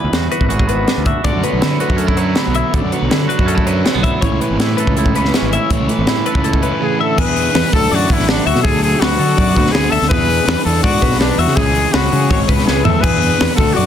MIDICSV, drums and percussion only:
0, 0, Header, 1, 2, 480
1, 0, Start_track
1, 0, Tempo, 371517
1, 1619, Time_signature, 4, 2, 24, 8
1, 8331, Tempo, 365408
1, 18067, End_track
2, 0, Start_track
2, 0, Title_t, "Drums"
2, 169, Note_on_c, 9, 42, 73
2, 173, Note_on_c, 9, 38, 103
2, 299, Note_off_c, 9, 42, 0
2, 302, Note_off_c, 9, 38, 0
2, 408, Note_on_c, 9, 42, 50
2, 527, Note_on_c, 9, 36, 71
2, 537, Note_off_c, 9, 42, 0
2, 646, Note_on_c, 9, 42, 68
2, 656, Note_off_c, 9, 36, 0
2, 768, Note_on_c, 9, 36, 63
2, 775, Note_off_c, 9, 42, 0
2, 887, Note_on_c, 9, 42, 58
2, 897, Note_off_c, 9, 36, 0
2, 1016, Note_off_c, 9, 42, 0
2, 1132, Note_on_c, 9, 42, 73
2, 1136, Note_on_c, 9, 38, 82
2, 1261, Note_off_c, 9, 42, 0
2, 1265, Note_off_c, 9, 38, 0
2, 1364, Note_on_c, 9, 42, 54
2, 1369, Note_on_c, 9, 36, 70
2, 1493, Note_off_c, 9, 42, 0
2, 1498, Note_off_c, 9, 36, 0
2, 1607, Note_on_c, 9, 42, 76
2, 1610, Note_on_c, 9, 36, 99
2, 1736, Note_off_c, 9, 42, 0
2, 1739, Note_off_c, 9, 36, 0
2, 1854, Note_on_c, 9, 42, 57
2, 1983, Note_off_c, 9, 42, 0
2, 2091, Note_on_c, 9, 42, 85
2, 2095, Note_on_c, 9, 38, 93
2, 2220, Note_off_c, 9, 42, 0
2, 2224, Note_off_c, 9, 38, 0
2, 2328, Note_on_c, 9, 42, 50
2, 2452, Note_on_c, 9, 36, 69
2, 2457, Note_off_c, 9, 42, 0
2, 2559, Note_on_c, 9, 42, 77
2, 2581, Note_off_c, 9, 36, 0
2, 2688, Note_off_c, 9, 42, 0
2, 2693, Note_on_c, 9, 36, 75
2, 2804, Note_on_c, 9, 42, 54
2, 2822, Note_off_c, 9, 36, 0
2, 2933, Note_off_c, 9, 42, 0
2, 3042, Note_on_c, 9, 42, 63
2, 3046, Note_on_c, 9, 38, 87
2, 3171, Note_off_c, 9, 42, 0
2, 3175, Note_off_c, 9, 38, 0
2, 3289, Note_on_c, 9, 42, 52
2, 3418, Note_off_c, 9, 42, 0
2, 3537, Note_on_c, 9, 42, 63
2, 3538, Note_on_c, 9, 36, 101
2, 3666, Note_off_c, 9, 42, 0
2, 3667, Note_off_c, 9, 36, 0
2, 3776, Note_on_c, 9, 42, 51
2, 3905, Note_off_c, 9, 42, 0
2, 4018, Note_on_c, 9, 42, 77
2, 4022, Note_on_c, 9, 38, 110
2, 4147, Note_off_c, 9, 42, 0
2, 4151, Note_off_c, 9, 38, 0
2, 4261, Note_on_c, 9, 42, 50
2, 4379, Note_on_c, 9, 36, 76
2, 4390, Note_off_c, 9, 42, 0
2, 4496, Note_on_c, 9, 42, 75
2, 4508, Note_off_c, 9, 36, 0
2, 4621, Note_on_c, 9, 36, 75
2, 4625, Note_off_c, 9, 42, 0
2, 4739, Note_on_c, 9, 42, 55
2, 4750, Note_off_c, 9, 36, 0
2, 4868, Note_off_c, 9, 42, 0
2, 4982, Note_on_c, 9, 42, 62
2, 4986, Note_on_c, 9, 38, 85
2, 5111, Note_off_c, 9, 42, 0
2, 5115, Note_off_c, 9, 38, 0
2, 5219, Note_on_c, 9, 36, 72
2, 5221, Note_on_c, 9, 42, 56
2, 5348, Note_off_c, 9, 36, 0
2, 5350, Note_off_c, 9, 42, 0
2, 5456, Note_on_c, 9, 42, 71
2, 5458, Note_on_c, 9, 36, 101
2, 5585, Note_off_c, 9, 42, 0
2, 5587, Note_off_c, 9, 36, 0
2, 5702, Note_on_c, 9, 42, 57
2, 5832, Note_off_c, 9, 42, 0
2, 5940, Note_on_c, 9, 42, 84
2, 5944, Note_on_c, 9, 38, 108
2, 6069, Note_off_c, 9, 42, 0
2, 6073, Note_off_c, 9, 38, 0
2, 6175, Note_on_c, 9, 42, 62
2, 6296, Note_on_c, 9, 36, 71
2, 6305, Note_off_c, 9, 42, 0
2, 6416, Note_on_c, 9, 42, 86
2, 6426, Note_off_c, 9, 36, 0
2, 6534, Note_on_c, 9, 36, 72
2, 6546, Note_off_c, 9, 42, 0
2, 6659, Note_on_c, 9, 42, 57
2, 6663, Note_off_c, 9, 36, 0
2, 6782, Note_on_c, 9, 38, 33
2, 6788, Note_off_c, 9, 42, 0
2, 6897, Note_on_c, 9, 42, 68
2, 6901, Note_off_c, 9, 38, 0
2, 6901, Note_on_c, 9, 38, 82
2, 7027, Note_off_c, 9, 42, 0
2, 7031, Note_off_c, 9, 38, 0
2, 7140, Note_on_c, 9, 42, 58
2, 7269, Note_off_c, 9, 42, 0
2, 7371, Note_on_c, 9, 36, 104
2, 7371, Note_on_c, 9, 42, 74
2, 7500, Note_off_c, 9, 36, 0
2, 7500, Note_off_c, 9, 42, 0
2, 7611, Note_on_c, 9, 42, 54
2, 7740, Note_off_c, 9, 42, 0
2, 7843, Note_on_c, 9, 42, 80
2, 7847, Note_on_c, 9, 38, 117
2, 7972, Note_off_c, 9, 42, 0
2, 7976, Note_off_c, 9, 38, 0
2, 8087, Note_on_c, 9, 42, 52
2, 8205, Note_on_c, 9, 36, 76
2, 8216, Note_off_c, 9, 42, 0
2, 8322, Note_on_c, 9, 42, 73
2, 8334, Note_off_c, 9, 36, 0
2, 8444, Note_on_c, 9, 36, 72
2, 8454, Note_off_c, 9, 42, 0
2, 8565, Note_on_c, 9, 42, 50
2, 8576, Note_off_c, 9, 36, 0
2, 8697, Note_off_c, 9, 42, 0
2, 9295, Note_on_c, 9, 36, 117
2, 9295, Note_on_c, 9, 49, 117
2, 9426, Note_off_c, 9, 36, 0
2, 9426, Note_off_c, 9, 49, 0
2, 9533, Note_on_c, 9, 46, 68
2, 9665, Note_off_c, 9, 46, 0
2, 9777, Note_on_c, 9, 46, 111
2, 9781, Note_on_c, 9, 38, 119
2, 9908, Note_off_c, 9, 46, 0
2, 9912, Note_off_c, 9, 38, 0
2, 10017, Note_on_c, 9, 36, 99
2, 10019, Note_on_c, 9, 46, 64
2, 10149, Note_off_c, 9, 36, 0
2, 10150, Note_off_c, 9, 46, 0
2, 10268, Note_on_c, 9, 46, 95
2, 10399, Note_off_c, 9, 46, 0
2, 10500, Note_on_c, 9, 36, 94
2, 10500, Note_on_c, 9, 46, 60
2, 10626, Note_on_c, 9, 38, 34
2, 10631, Note_off_c, 9, 46, 0
2, 10632, Note_off_c, 9, 36, 0
2, 10743, Note_on_c, 9, 46, 80
2, 10747, Note_off_c, 9, 38, 0
2, 10747, Note_on_c, 9, 38, 95
2, 10874, Note_off_c, 9, 46, 0
2, 10878, Note_off_c, 9, 38, 0
2, 10980, Note_on_c, 9, 46, 71
2, 11097, Note_on_c, 9, 38, 40
2, 11111, Note_off_c, 9, 46, 0
2, 11216, Note_on_c, 9, 46, 78
2, 11219, Note_on_c, 9, 36, 108
2, 11228, Note_off_c, 9, 38, 0
2, 11347, Note_off_c, 9, 46, 0
2, 11350, Note_off_c, 9, 36, 0
2, 11465, Note_on_c, 9, 46, 64
2, 11597, Note_off_c, 9, 46, 0
2, 11710, Note_on_c, 9, 46, 95
2, 11713, Note_on_c, 9, 38, 127
2, 11841, Note_off_c, 9, 46, 0
2, 11845, Note_off_c, 9, 38, 0
2, 11956, Note_on_c, 9, 46, 66
2, 12087, Note_off_c, 9, 46, 0
2, 12185, Note_on_c, 9, 36, 100
2, 12187, Note_on_c, 9, 46, 100
2, 12316, Note_off_c, 9, 36, 0
2, 12319, Note_off_c, 9, 46, 0
2, 12424, Note_on_c, 9, 36, 82
2, 12432, Note_on_c, 9, 46, 58
2, 12555, Note_on_c, 9, 38, 30
2, 12556, Note_off_c, 9, 36, 0
2, 12563, Note_off_c, 9, 46, 0
2, 12662, Note_on_c, 9, 46, 83
2, 12666, Note_off_c, 9, 38, 0
2, 12666, Note_on_c, 9, 38, 112
2, 12794, Note_off_c, 9, 46, 0
2, 12798, Note_off_c, 9, 38, 0
2, 12895, Note_on_c, 9, 46, 73
2, 13027, Note_off_c, 9, 46, 0
2, 13029, Note_on_c, 9, 38, 37
2, 13143, Note_on_c, 9, 36, 124
2, 13146, Note_on_c, 9, 46, 97
2, 13160, Note_off_c, 9, 38, 0
2, 13275, Note_off_c, 9, 36, 0
2, 13277, Note_off_c, 9, 46, 0
2, 13388, Note_on_c, 9, 46, 67
2, 13520, Note_off_c, 9, 46, 0
2, 13631, Note_on_c, 9, 46, 102
2, 13635, Note_on_c, 9, 38, 127
2, 13762, Note_off_c, 9, 46, 0
2, 13766, Note_off_c, 9, 38, 0
2, 13873, Note_on_c, 9, 46, 69
2, 14004, Note_off_c, 9, 46, 0
2, 14095, Note_on_c, 9, 46, 103
2, 14099, Note_on_c, 9, 36, 96
2, 14227, Note_off_c, 9, 46, 0
2, 14231, Note_off_c, 9, 36, 0
2, 14339, Note_on_c, 9, 46, 69
2, 14340, Note_on_c, 9, 36, 84
2, 14463, Note_on_c, 9, 38, 35
2, 14470, Note_off_c, 9, 46, 0
2, 14472, Note_off_c, 9, 36, 0
2, 14579, Note_on_c, 9, 46, 85
2, 14583, Note_off_c, 9, 38, 0
2, 14583, Note_on_c, 9, 38, 110
2, 14710, Note_off_c, 9, 46, 0
2, 14714, Note_off_c, 9, 38, 0
2, 14812, Note_on_c, 9, 46, 72
2, 14942, Note_on_c, 9, 38, 37
2, 14943, Note_off_c, 9, 46, 0
2, 15051, Note_on_c, 9, 46, 84
2, 15059, Note_on_c, 9, 36, 111
2, 15074, Note_off_c, 9, 38, 0
2, 15182, Note_off_c, 9, 46, 0
2, 15190, Note_off_c, 9, 36, 0
2, 15295, Note_on_c, 9, 46, 65
2, 15426, Note_off_c, 9, 46, 0
2, 15539, Note_on_c, 9, 46, 89
2, 15543, Note_on_c, 9, 38, 127
2, 15670, Note_off_c, 9, 46, 0
2, 15674, Note_off_c, 9, 38, 0
2, 15789, Note_on_c, 9, 46, 64
2, 15921, Note_off_c, 9, 46, 0
2, 16026, Note_on_c, 9, 36, 87
2, 16027, Note_on_c, 9, 46, 85
2, 16157, Note_off_c, 9, 36, 0
2, 16159, Note_off_c, 9, 46, 0
2, 16266, Note_on_c, 9, 36, 91
2, 16270, Note_on_c, 9, 46, 63
2, 16392, Note_on_c, 9, 38, 35
2, 16398, Note_off_c, 9, 36, 0
2, 16402, Note_off_c, 9, 46, 0
2, 16511, Note_off_c, 9, 38, 0
2, 16511, Note_on_c, 9, 38, 63
2, 16642, Note_off_c, 9, 38, 0
2, 16742, Note_on_c, 9, 43, 104
2, 16874, Note_off_c, 9, 43, 0
2, 16986, Note_on_c, 9, 36, 107
2, 16986, Note_on_c, 9, 49, 112
2, 17118, Note_off_c, 9, 36, 0
2, 17118, Note_off_c, 9, 49, 0
2, 17227, Note_on_c, 9, 46, 63
2, 17358, Note_off_c, 9, 46, 0
2, 17470, Note_on_c, 9, 46, 97
2, 17474, Note_on_c, 9, 38, 127
2, 17601, Note_off_c, 9, 46, 0
2, 17605, Note_off_c, 9, 38, 0
2, 17704, Note_on_c, 9, 36, 112
2, 17709, Note_on_c, 9, 46, 60
2, 17835, Note_off_c, 9, 36, 0
2, 17840, Note_off_c, 9, 46, 0
2, 17944, Note_on_c, 9, 46, 93
2, 18067, Note_off_c, 9, 46, 0
2, 18067, End_track
0, 0, End_of_file